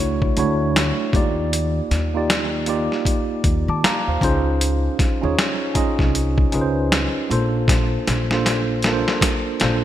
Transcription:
Already playing: C#2 A3 D4 E4 F#4 C#5
0.22 kick
0.36 D2 A3 D4 E4 F#4 C#5, closed hi-hat
0.76 snare, closed hi-hat
1.13 D#2 A#3 D#4 F4 G4 D5, kick, closed hi-hat
1.53 closed hi-hat
1.91 D#2, snare, closed hi-hat
2.14 A#3 D#4 F4 G4 D5
2.30 snare, closed hi-hat
2.66 A#3 D#4 F4 G4 D5, closed hi-hat
2.92 snare
3.05 kick, closed hi-hat
3.44 D#2, kick, closed hi-hat
3.68 D#3 A5 D6
3.84 F5 A#5, muted upright bass stroke, snare, closed hi-hat
4.07 D#2 C5 F5
4.21 C#2 C#4 D#4 F4 G#4 C5, kick, closed hi-hat
4.61 closed hi-hat
4.99 kick, snare, closed hi-hat
5.21 D#2 C#4 D#4 F4 G#4 C#5
5.39 snare, closed hi-hat
5.74 C#4 D#4 F4 G#4 D#5, muted upright bass stroke, kick, closed hi-hat
5.99 C2, kick, snare
6.15 closed hi-hat
6.38 kick
6.52 C#2 C#4 D#4 F4 G#4 B4, closed hi-hat
6.61 C5
6.92 snare, closed hi-hat
7.30 A#1 A#3 D4 F4 A4 C5, closed hi-hat
7.68 kick, snare, closed hi-hat
8.07 A#1, snare, closed hi-hat
8.30 A#3 D4 F4 A4 C5, snare
8.46 snare, closed hi-hat
8.82 A#3 D4 F4, snare, closed hi-hat
8.87 A4 A#4
8.94 C5
9.08 snare
9.21 kick, snare, closed hi-hat
9.60 A#1 A#3 D4 F4 A4 C5, snare, closed hi-hat

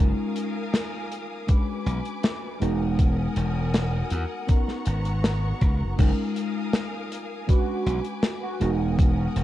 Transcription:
Already playing: G#3 C#4
0.00 F#1 D#4 F4 A#4 F5 G#5 D#6
0.36 closed hi-hat
0.74 snare, closed hi-hat
1.12 closed hi-hat
1.47 G#3 C#4 D4 F#4 B4 G#5 D6, kick, closed hi-hat
1.86 B1, closed hi-hat
2.05 closed hi-hat
2.23 snare, closed hi-hat
2.60 E1 G#3 B3 D#4 F#4 A#4 F#5 G#5 D#6, closed hi-hat
2.99 kick, closed hi-hat
3.36 E1, closed hi-hat
3.74 snare, closed hi-hat
4.10 E2, closed hi-hat
4.47 B3 C#4 D#4 F#4 A#4 A#5 C#6, kick, closed hi-hat
4.68 snare
4.86 G#1, closed hi-hat
5.05 closed hi-hat
5.24 snare, closed hi-hat
5.61 C#2, kick, closed hi-hat
5.80 F#1
5.97 F#1 G#3 C#4 D#4 F4 A#4 F5 G#5 D#6, kick, closed hi-hat, crash
6.36 closed hi-hat
6.73 snare, closed hi-hat
7.12 closed hi-hat
7.47 G#3 C#4 D4 F#4 B4 D6, kick, closed hi-hat
7.86 B1, closed hi-hat
8.04 closed hi-hat
8.23 snare, closed hi-hat
8.43 F#4
8.60 E1 G#3 B3 D#4 F#4 A#4 F#5 D#6, closed hi-hat
8.99 kick, closed hi-hat
9.36 E1, closed hi-hat

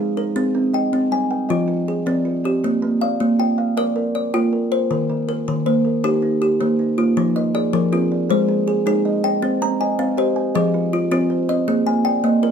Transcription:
Already playing: G#3 D#4 G#4 F5
0.17 D#4 A#4
0.36 C4 G#4
0.55 C4
0.73 D#5 G5
0.93 C4
1.12 G3 G#5
1.31 G5
1.49 F3 F4 D#5
1.68 F4
1.88 G#4
2.06 F3 C4 D5
2.25 F4
2.44 C4 G4
2.64 A#3 F4
2.82 A#3
3.01 D5 F5
3.20 A#3
3.39 F4 G5
3.58 F5
3.77 A#4 D5
3.96 A#4
4.15 D5
4.34 A#3 F4 G5
4.53 A#4
4.72 F4 C5
4.91 D#3 A#4
5.10 D#3
5.29 A#4
5.48 D#3
5.66 A#3 C5
5.85 A#4
6.04 D#4 G4
6.22 D#4
6.42 G4
6.60 D#3 A#3 C5
6.79 D#4
6.98 A#3 F4
7.17 F3 D#4
7.36 F3 D#5
7.55 G#4 D5
7.73 F3 A#4
7.92 C4 F4 G#4
8.12 D5
8.30 G#3 G#4 C5
8.48 G#4
8.68 G#4
8.86 G#3 D#4 G#4
9.05 D#5
9.24 D#4 G5
9.42 C4 C5
9.62 C4 A#5
9.81 D#5 G#5
9.99 C4 F5
10.17 G4 C5 D#5
10.36 G#5
10.55 F3 G#4 D#5
10.74 F4
10.93 F4
11.11 F3 C4 F4
11.30 C5
11.49 C4 D#5
11.68 A#3 G#4
11.87 A#3 G#5
12.05 D5 G5
12.24 A#3 D#5
12.43 F4 A#4 D5

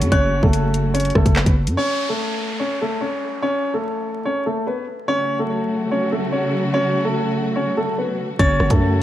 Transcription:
Already playing: C#3 F#3 A3 F#4
0.02 F#2, closed hi-hat
0.12 F#1 C#4 C#5 F#6, kick, closed hi-hat
0.43 F#1 A3 A4, kick
0.53 closed hi-hat
0.74 closed hi-hat
0.94 C#4 C#5, closed hi-hat
1.00 closed hi-hat
1.05 closed hi-hat
1.10 closed hi-hat
1.15 F#1 A3 A4, kick, cross-stick
1.26 F#1, kick, closed hi-hat
1.36 B3 B4, clap
1.46 F#1, kick, closed hi-hat
1.67 F#2, closed hi-hat
1.77 C#4 C#5, downlifter
2.09 A3 A4
2.60 C#4 C#5
2.81 A3 A4
3.01 C#4 C#5
3.42 C#4 C#5
3.74 A3 A4
4.25 C#4 C#5
4.46 A3 A4
4.67 B3 B4
5.08 C#3 F#3 A3 C#4 F#4 C#5
5.39 A3 A4
5.91 C#4 C#5
6.12 A3 A4
6.32 C#4 C#5
6.74 C#4 C#5
7.05 A3 A4
7.56 C#4 C#5
7.77 A3 A4
7.98 B3 B4
8.39 F#1 C#3 F#3 A3 C#4 F#4 C#5 A6, kick, closed hi-hat
8.60 F#1, cross-stick
8.70 F#2 A3 A4, kick, closed hi-hat

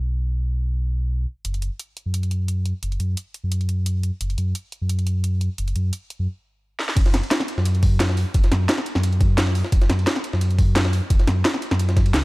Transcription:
Already playing: B1
1.45 F#1, closed hi-hat
1.54 closed hi-hat
1.62 closed hi-hat
1.79 closed hi-hat
1.97 closed hi-hat
2.06 F#2
2.14 closed hi-hat
2.23 closed hi-hat
2.31 closed hi-hat
2.48 closed hi-hat
2.66 closed hi-hat
2.83 F#1, closed hi-hat
2.92 closed hi-hat
3.00 F#2, closed hi-hat
3.17 closed hi-hat
3.34 closed hi-hat
3.44 F#2
3.52 closed hi-hat
3.61 closed hi-hat
3.69 closed hi-hat
3.86 closed hi-hat
4.03 closed hi-hat
4.21 F#1, closed hi-hat
4.30 closed hi-hat
4.38 F#2, closed hi-hat
4.55 closed hi-hat
4.72 closed hi-hat
4.82 F#2
4.89 closed hi-hat
4.99 closed hi-hat
5.07 closed hi-hat
5.24 closed hi-hat
5.41 closed hi-hat
5.58 F#1, closed hi-hat
5.68 closed hi-hat
5.76 F#2, closed hi-hat
5.93 closed hi-hat
6.10 closed hi-hat
6.19 F#2
6.79 snare
6.89 snare
6.97 F#1, kick, closed hi-hat, crash, ride
7.06 snare, closed hi-hat
7.14 snare, closed hi-hat, ride
7.23 ride
7.31 snare, closed hi-hat, ride
7.40 snare, ride
7.48 closed hi-hat, ride
7.58 F#2, snare
7.65 closed hi-hat, ride
7.75 closed hi-hat
7.83 kick, closed hi-hat, open hi-hat
8.00 snare, closed hi-hat, ride
8.09 snare
8.17 open hi-hat, ride
8.34 F#1, kick, closed hi-hat, ride
8.44 snare, closed hi-hat
8.52 F#2, snare, closed hi-hat, ride
8.69 snare, closed hi-hat, ride
8.78 snare
8.86 closed hi-hat, ride
8.95 F#2, snare
9.03 closed hi-hat, ride
9.13 closed hi-hat
9.21 kick, closed hi-hat, ride
9.38 snare, closed hi-hat, ride
9.47 snare
9.55 open hi-hat, ride
9.64 snare
9.72 F#1, kick, closed hi-hat, ride
9.81 snare, closed hi-hat
9.90 F#2, snare, closed hi-hat, ride
9.99 ride
10.07 snare, closed hi-hat, ride
10.16 snare, ride
10.24 closed hi-hat, ride
10.33 F#2, snare
10.41 closed hi-hat, ride
10.51 closed hi-hat
10.59 kick, closed hi-hat, open hi-hat
10.76 snare, closed hi-hat, ride
10.85 snare
10.93 open hi-hat, ride
11.10 F#1, kick, closed hi-hat, ride
11.19 snare, closed hi-hat
11.27 F#2, snare, closed hi-hat, ride
11.45 snare, closed hi-hat, ride
11.54 snare
11.62 closed hi-hat, ride
11.71 F#2, snare
11.79 closed hi-hat, ride
11.89 snare, closed hi-hat
11.97 kick, snare, closed hi-hat, ride
12.06 ride
12.14 C#2, snare, closed hi-hat

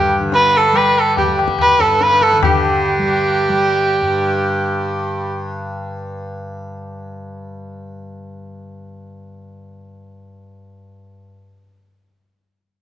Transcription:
Already playing: G2 D3 G3 G4
0.20 D3
0.32 B4, tabla te
0.54 A4, tabla te
0.72 G3, tabla na
0.77 B4
0.99 A4
1.17 G4, tabla tin, tabla ge
1.27 G3
1.39 tabla na
1.48 tabla ke
1.59 B4, tabla na, tabla ge
1.79 G2 A4, tabla te
2.01 B4, tabla te
2.11 tabla te
2.21 A4, tabla ke
2.31 D3, tabla te
2.43 G4, tabla na, tabla ge
2.47 D3
2.99 G3
3.49 G3
4.02 G2

